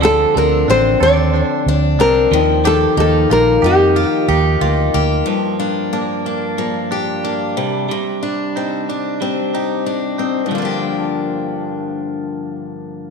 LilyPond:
<<
  \new Staff \with { instrumentName = "Nylon-string guitar" } { \time 4/4 \key g \minor \tempo 4 = 92 a'8 bes'8 c''8 d''4. bes'4 | a'8 a'8 bes'8 g'2 r8 | r1 | r1 |
r1 | }
  \new Staff \with { instrumentName = "Clean electric guitar" } { \time 4/4 \key g \minor <f a'>8 c'8 d'8 a'8 d'4 d'8 f8 | <f g'>8 bes8 f'8 g'8 f'8 g'8 f'8 bes8 | f8 bes8 d'8 bes8 f8 d'8 bes8 g8 | g8 d'8 ees'8 d'8 g8 ees'8 d'8 ees'8 |
<f bes d'>1 | }
  \new Staff \with { instrumentName = "Steel-string acoustic guitar" } { \time 4/4 \key g \minor d8 d'8 c'8 d'4 d'8 c'8 ees8 | ees8 ees'8 bes8 ees'8 g'8 ees'8 bes8 g'8 | g,8 d'8 bes8 d'8 bes8 g'8 d'8 c8 | c8 d'8 c'8 d'8 c'8 g'8 d'8 c'8 |
<g, d f bes d' g'>1 | }
  \new Staff \with { instrumentName = "Fingered electric bass" } { \clef bass \time 4/4 \key g \minor d,8 d,8 a,,8 ees,8. r16 d,8 c,8 ees,8~ | ees,8 ees,8 bes,,8 f,8. r16 ees,8 d,8 d,8 | r1 | r1 |
r1 | }
>>